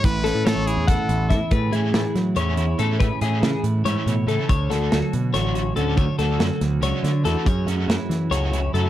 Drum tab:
HH |xxxxxxx|xxxxxxx|xxxxxxx|xxxxxxx|
SD |-oo-o-o|--oo---|--o----|-oo-o--|
BD |o---o-o|o------|o------|o------|

HH |xxxxxxx|xxxxxxx|
SD |-ooo-oo|--oo---|
BD |o------|o------|